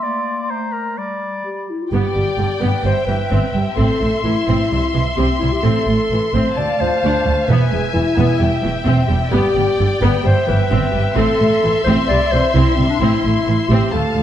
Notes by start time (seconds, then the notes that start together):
Already playing: C6
0.02 A#3 D5
0.50 A3 C5 A#5
0.73 A#4
0.98 G3 D5 B5
1.45 G4
1.70 E4
1.82 F4
1.92 G1 G2 B3 G4 D5 G5
2.15 G1 G2 G3
2.38 G1 G2 D3
2.61 G1 G2 B3 B4
2.83 G1 G2 G3 C5 E5
3.06 G1 G2 E3 B4
3.30 G1 G2 C4
3.54 G1 G2 G3
3.76 A1 A2 C4 A4 C6
4.01 A1 A2 A3
4.23 A1 A2 E3 E4
4.47 A1 A2 C4
4.71 C2 C3 G3
4.93 C2 C3 E3
5.16 C2 C3 C4 G4
5.39 C2 C3 G3 E4
5.52 G4
5.63 A1 A2 C4 A4
5.87 A1 A2 A3
6.11 A1 A2 E3
6.34 A1 A2 C4 C5
6.55 D2 A3 D5 F5 A5
6.80 D2 F3 C5
7.03 D2 D4
7.26 D2 A3
7.48 E1 E2 B3 B4 E5 G#5
7.72 E1 E2 G#3
7.93 E1 E2 E3 E4
8.17 E1 E2 B3
8.40 E1 E2 G3 G5
8.62 E1 E2 E3
8.85 E1 E2 C4
9.08 E1 E2 G3
9.31 G1 G2 B3 G4 D5
9.56 G1 G2 G3
9.79 G1 G2 D3
10.01 G1 G2 B3 B4
10.23 G1 G2 G3 C5 E5
10.47 G1 G2 E3 B4
10.70 G1 G2 C4
10.91 G1 G2 G3
11.15 A1 A2 C4 A4 C6
11.40 A1 A2 A3
11.63 A1 A2 E3
11.84 A1 A2 C4 C5
12.08 C2 C3 G3 D5
12.32 C2 C3 E3 C5
12.53 C2 C3 C4 E4
12.76 C2 C3 G3 C4
12.89 D4
12.99 A1 A2 C4 E4
13.23 A1 A2 A3
13.46 A1 A2 E3
13.69 A1 A2 C4 G4
13.92 D2 A3 A4 F5 A5
14.15 D2 F3